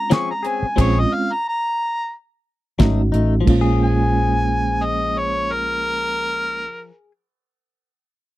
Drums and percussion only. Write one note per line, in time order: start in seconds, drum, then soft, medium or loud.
0.11 snare loud
0.11 closed hi-hat medium
0.45 closed hi-hat medium
0.78 kick loud
0.78 closed hi-hat medium
0.78 crash medium
2.80 kick medium
2.80 snare loud
2.80 closed hi-hat medium
3.14 closed hi-hat medium
3.47 kick loud
3.47 crash medium